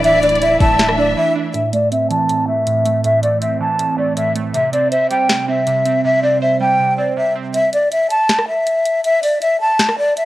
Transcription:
Already playing: 808-style bass D1, synth keys E3 A3 D4 E4, string section E3 E4 D5
0.04 synth keys E3, violin section D5, flute E5, closed hi-hat
0.23 synth keys D4, flute D5, closed hi-hat
0.29 closed hi-hat
0.36 closed hi-hat
0.42 synth keys E4, flute E5, closed hi-hat
0.60 808-style bass D1, synth keys A3, violin section E5, flute A5, kick, open hi-hat
0.79 synth keys E3, snare, closed hi-hat
0.89 cross-stick
0.98 synth keys D4, flute D5
1.17 synth keys E3, flute E5
1.35 synth keys D4
1.54 synth keys A2, flute E5, closed hi-hat
1.73 synth keys A3, flute D5, closed hi-hat
1.92 synth keys C4, flute E5, closed hi-hat
2.10 synth keys E3, flute A5, closed hi-hat
2.29 synth keys A2, closed hi-hat
2.48 synth keys A3, flute E5
2.67 synth keys A2, closed hi-hat
2.86 synth keys A3, closed hi-hat
3.04 synth keys A2, flute E5, closed hi-hat
3.23 synth keys A3, flute D5, closed hi-hat
3.42 synth keys C4, flute E5, closed hi-hat
3.60 synth keys E3, flute A5
3.79 synth keys A2, closed hi-hat
3.98 synth keys A3, flute D5
4.17 synth keys A2, flute E5, closed hi-hat
4.36 synth keys A3, closed hi-hat
4.54 synth keys C3, flute E5, closed hi-hat
4.73 synth keys C4, flute D5, closed hi-hat
4.91 synth keys C5, flute E5, closed hi-hat
5.10 synth keys G3, flute G5, closed hi-hat
5.29 synth keys C3, snare, closed hi-hat
5.48 synth keys C4, flute E5
5.67 synth keys C3, closed hi-hat
5.86 synth keys C4, closed hi-hat
6.04 synth keys C3, flute E5
6.23 synth keys C4, flute D5
6.42 synth keys C5, flute E5
6.61 synth keys G3, flute G5
6.79 synth keys C3
6.98 synth keys C4, flute D5
7.17 synth keys C3, flute E5
7.35 synth keys C4
7.54 flute E5, closed hi-hat
7.73 flute D5, closed hi-hat
7.92 flute E5, closed hi-hat
8.10 flute A5, closed hi-hat
8.29 snare, closed hi-hat
8.39 cross-stick
8.48 flute E5
8.67 closed hi-hat
8.86 closed hi-hat
9.04 flute E5, closed hi-hat
9.23 flute D5, open hi-hat
9.42 flute E5, closed hi-hat
9.61 flute A5
9.79 snare, closed hi-hat
9.89 cross-stick
9.98 flute D5
10.17 flute E5, closed hi-hat

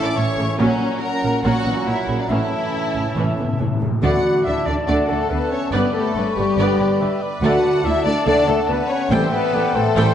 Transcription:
Already playing: trombone section A2 E3, french horn section C#4 E4, clarinet C#4, cor anglais E5, flute section A5
0.03 violin section D5 D6
0.16 double bass section A1, trombone section A2 E3, cello section A2, viola section E3 C#4, french horn section C#4 E4, violin section C#5 C#6
0.38 double bass section A1, cello section A2, viola section C#3 A3
0.58 double bass section A#1, trombone section A#2 F#3, cello section A#2, viola section F#3 C#4, clarinet C#4, violin section C#4 C#5, french horn section C#4, cor anglais F#5, flute section A#5
1.01 trombone section A#2 F#3, clarinet C#4, french horn section C#4, violin section A#4 A#5, cor anglais F#5, flute section A#5
1.23 double bass section A#1, cello section A#2, viola section C#3 A#3
1.43 double bass section A#1, cello section A#2, trombone section A#2 F#3, viola section F#3 C#4, clarinet C#4, french horn section C#4, violin section F#4 F#5, cor anglais F#5, flute section A#5
1.65 double bass section A#1, cello section A#2, viola section E3 B3
1.86 double bass section A#1, cello section A#2, viola section F#3 C#4, violin section E4 E5
2.08 double bass section A#1, cello section A#2, viola section C#3 A#3
2.21 violin section D4 D5
2.29 double bass section A1, trombone section A2 E3, cello section A2, timpani A2, viola section E3 C#4, french horn section A3 C#4, clarinet C#4, violin section E4 E5, cor anglais E5, flute section A5
2.37 timpani A2
2.54 timpani A2
2.61 timpani A2
2.69 timpani A2
2.76 timpani A2
2.85 timpani A2
2.92 double bass section A1, timpani A2, cello section A2, viola section C#3 A3
3.00 timpani A2
3.06 timpani A2
3.14 double bass section A1, timpani A2, cello section A2, viola section E3 C#4
3.22 timpani A2
3.28 timpani A2
3.36 double bass section A1, timpani A2, cello section A2, viola section D3 B3
3.44 timpani A2
3.53 timpani A2
3.59 double bass section A1, cello section A2, timpani A2, viola section E3 C#4
3.67 timpani A2
3.74 timpani A2
3.81 double bass section A1, cello section A2, timpani A2, viola section C#3 A3
3.90 timpani A2
4.02 double bass section D2, trombone section D3 A3, cello section D3, timpani D3, french horn section F#4, viola section A4 D5, cor anglais D5, clarinet F#5, violin section F#5, flute section B5
4.23 cor anglais D5
4.44 double bass section D2, cello section D3, french horn section E4, viola section A4 D5, clarinet E5, violin section E5, flute section A5
4.66 double bass section D2, cello section D3, french horn section D4, viola section A4 D5, clarinet D5, violin section D5
4.86 double bass section D2, trombone section D3 A3, cello section D3, french horn section D4, violin section F#4 D5, viola section A4 D5, clarinet D5, cor anglais F#5, flute section A5
5.08 double bass section D2, cello section D3, french horn section A3, clarinet A4, violin section A4, viola section A4 D5
5.29 double bass section D2, cello section D3, french horn section B3, viola section A4 D5, violin section A4 B4, clarinet B4, cor anglais E5, flute section A5
5.51 french horn section C#4, clarinet C#5, violin section C#5
5.72 double bass section G1, cello section G2, trombone section D3 B3, french horn section B3, violin section G4 B4, viola section B4 D5, clarinet B4, cor anglais D5, flute section B5
5.93 french horn section A3, clarinet A4, violin section A4
6.14 double bass section G1, cello section G2, violin section B4, viola section B4 D5, cor anglais C#5, flute section C#6
6.35 double bass section G1, cello section G2, french horn section G3, violin section G4, clarinet G4, cor anglais B4, viola section B4 D5
6.57 double bass section G1, cello section G2, trombone section D3 B3, cor anglais B4, viola section B4 D5, violin section D5, flute section D6
6.79 double bass section G1, cello section G2, viola section B4 D5, flute section B5
7.00 double bass section G1, cello section G2, violin section B4, viola section B4 D5, cor anglais E5
7.22 cor anglais D5
7.42 double bass section D2, cello section D2, timpani D3, trombone section D3 A3, french horn section F#4, viola section A4 D5, clarinet F#5, violin section F#5, flute section A5
7.84 double bass section D2, cello section D2, french horn section E4, viola section A4 D5, violin section A4 E5, clarinet E5
8.04 double bass section D2, cello section D2, french horn section D4, viola section A4 D5, clarinet D5, violin section D5
8.26 double bass section D2, cello section D2, trombone section D3 A3, french horn section D4, viola section A4 D5, clarinet D5, violin section D5, cor anglais F#5
8.47 double bass section D2, cello section D2, french horn section A3, viola section A4 D5, clarinet A4, violin section A4
8.69 double bass section D2, cello section D2, french horn section B3, viola section A4 D5, clarinet B4, violin section B4, cor anglais F#5
8.89 french horn section C#4, violin section C#5, clarinet C#5
9.10 double bass section A1, timpani A2, cello section A2, trombone section E3 G3, french horn section C4, violin section A4 C5, viola section A4 G5, clarinet C5, cor anglais E5, flute section G5
9.33 french horn section B3, violin section B4, clarinet B4
9.53 double bass section A1, cello section A2, viola section A4 G5, cor anglais D5
9.74 double bass section A1, cello section A2, french horn section A3, clarinet A4, violin section A4, viola section A4 G5, cor anglais C5
9.95 double bass section A1, cello section A2, trombone section E3 G3, viola section A4 G5, violin section C5, cor anglais C5, flute section C6

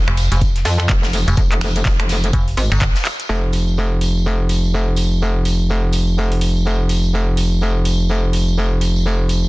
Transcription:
0.08 fm bass F1, finger snap
0.17 open hi-hat, tambourine
0.32 fm bass F1, snare, closed hi-hat, tambourine
0.41 kick, closed hi-hat, tambourine
0.56 snare, closed hi-hat
0.65 wobble bass F2, snare, open hi-hat, tambourine
0.80 finger snap, closed hi-hat, tambourine
0.89 wobble bass F1, kick, clap, closed hi-hat, tambourine
1.03 snare, tambourine
1.13 open hi-hat, tambourine
1.28 fm bass F1, closed hi-hat, tambourine
1.37 wobble bass F1, kick, closed hi-hat, tambourine
1.52 wobble bass F1, clap, closed hi-hat
1.61 finger snap, open hi-hat, tambourine
1.76 closed hi-hat, tambourine
1.85 kick, snare, clap, closed hi-hat, tambourine
2.00 wobble bass F1, finger snap, closed hi-hat
2.09 snare, open hi-hat, tambourine
2.23 closed hi-hat, tambourine
2.33 fm bass F1, kick, closed hi-hat, tambourine
2.48 open hi-hat
2.57 wobble bass G#1, open hi-hat, tambourine
2.72 fm bass G1, finger snap, closed hi-hat, tambourine
2.81 kick, clap, closed hi-hat, tambourine
2.95 snare, closed hi-hat, tambourine
3.05 clap, closed hi-hat, open hi-hat, tambourine
3.20 closed hi-hat, tambourine
3.29 wobble bass F1, tambourine
3.53 open hi-hat, tambourine
3.67 tambourine
3.77 tambourine
4.01 open hi-hat, tambourine
4.16 tambourine
4.26 tambourine
4.49 open hi-hat, tambourine
4.64 tambourine
4.73 tambourine
4.96 open hi-hat, tambourine
5.11 tambourine
5.21 tambourine
5.45 open hi-hat, tambourine
5.59 tambourine
5.69 tambourine
5.93 open hi-hat, tambourine
6.07 tambourine
6.18 tambourine
6.32 open hi-hat
6.41 open hi-hat, tambourine
6.57 tambourine
6.65 tambourine
6.89 open hi-hat, tambourine
7.04 tambourine
7.13 tambourine
7.37 open hi-hat, tambourine
7.52 tambourine
7.61 tambourine
7.85 open hi-hat, tambourine
8.00 tambourine
8.09 tambourine
8.33 open hi-hat, tambourine
8.48 tambourine
8.57 tambourine
8.81 open hi-hat, tambourine
8.96 tambourine
9.06 tambourine
9.29 open hi-hat, tambourine
9.43 tambourine

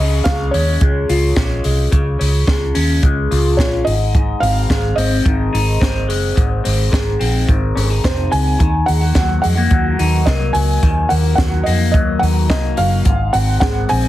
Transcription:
Already playing: clean electric guitar C#3 C#4, felt piano D#5
0.00 fingered electric bass C#2
0.24 clean electric guitar G#3, felt piano F5, kick, snare, closed hi-hat
0.51 fingered electric bass D#2, clean electric guitar C#4, felt piano C#5, open hi-hat
0.81 fingered electric bass C#2, clean electric guitar G#3, kick, closed hi-hat
1.09 fingered electric bass C#2, clean electric guitar F4, open hi-hat
1.36 fingered electric bass A#1, clean electric guitar C#4, kick, snare, closed hi-hat
1.64 fingered electric bass C2, clean electric guitar G#3, open hi-hat
1.92 fingered electric bass C#2, clean electric guitar C#3, kick, closed hi-hat
2.19 fingered electric bass C#2, clean electric guitar C#4, open hi-hat
2.47 clean electric guitar G#3, kick, snare, closed hi-hat
2.75 fingered electric bass D#2, clean electric guitar C#4, open hi-hat
3.03 fingered electric bass C#2, clean electric guitar G#3, kick, closed hi-hat
3.31 fingered electric bass C#2, clean electric guitar F4, open hi-hat
3.57 fingered electric bass A#1, clean electric guitar C#4, felt piano C#5, kick, snare, closed hi-hat
3.85 fingered electric bass G#1, clean electric guitar G#2, felt piano D#5, open hi-hat
4.15 clean electric guitar G#2, kick, closed hi-hat
4.40 fingered electric bass G#1, clean electric guitar C4, felt piano F5, open hi-hat
4.70 fingered electric bass G#1, clean electric guitar G#3, kick, snare, closed hi-hat
4.96 fingered electric bass G#1, clean electric guitar C4, felt piano D#5, open hi-hat
5.25 fingered electric bass G#1, clean electric guitar D#3, kick, closed hi-hat
5.53 fingered electric bass G#1, clean electric guitar D#4, open hi-hat
5.80 fingered electric bass G#1, clean electric guitar C4, kick, snare, closed hi-hat
6.08 fingered electric bass F#1, clean electric guitar G#3, open hi-hat
6.36 fingered electric bass G#1, clean electric guitar G#2, kick, closed hi-hat
6.64 fingered electric bass G#1, clean electric guitar C4, open hi-hat
6.91 clean electric guitar G#3, kick, snare, closed hi-hat
7.19 fingered electric bass A#1, clean electric guitar C4, open hi-hat
7.48 fingered electric bass G#1, clean electric guitar D#3, kick, closed hi-hat
7.76 fingered electric bass G#1, clean electric guitar C#4, open hi-hat
7.90 clean electric guitar D#4
8.04 fingered electric bass F1, clean electric guitar C4, felt piano C5, kick, snare, closed hi-hat
8.31 fingered electric bass C#2, clean electric guitar G#3, felt piano G#5, open hi-hat
8.59 fingered electric bass D#2, clean electric guitar D#3, kick, closed hi-hat
8.86 fingered electric bass D#2, clean electric guitar G#3, felt piano F#5, open hi-hat
9.01 clean electric guitar A#3
9.15 fingered electric bass D#2, clean electric guitar F#3, kick, snare, closed hi-hat
9.42 fingered electric bass F2, clean electric guitar G#3, felt piano F#5, open hi-hat
9.57 clean electric guitar A#3
9.71 fingered electric bass D#2, clean electric guitar F#3, kick, closed hi-hat
9.99 fingered electric bass D#2, clean electric guitar D#4, open hi-hat
10.25 fingered electric bass C2, clean electric guitar A#3, felt piano D#5, kick, snare, closed hi-hat
10.53 fingered electric bass C#2, clean electric guitar F#3, felt piano G#5, open hi-hat
10.83 fingered electric bass D#2, clean electric guitar D#3, kick, closed hi-hat
11.09 fingered electric bass D#2, clean electric guitar A#3, felt piano F#5, open hi-hat
11.35 fingered electric bass D#2, clean electric guitar F#3, felt piano F#5, kick, snare, closed hi-hat
11.63 fingered electric bass F2, clean electric guitar A#3, felt piano D#5, open hi-hat
11.92 fingered electric bass D#2, clean electric guitar F#3, felt piano D#5, kick, closed hi-hat
12.19 fingered electric bass D#2, clean electric guitar D#4, felt piano F#5, open hi-hat
12.50 fingered electric bass C2, clean electric guitar A#3, felt piano D#5, kick, snare, closed hi-hat
12.77 fingered electric bass F#1, clean electric guitar F#3, felt piano F5, open hi-hat
13.05 fingered electric bass G#1, clean electric guitar G#2, kick, closed hi-hat
13.33 fingered electric bass G#1, clean electric guitar C4, felt piano F#5, open hi-hat
13.60 fingered electric bass G#1, clean electric guitar G#3, felt piano F#5, kick, snare, closed hi-hat
13.89 fingered electric bass A#1, clean electric guitar C4, felt piano G#5, open hi-hat

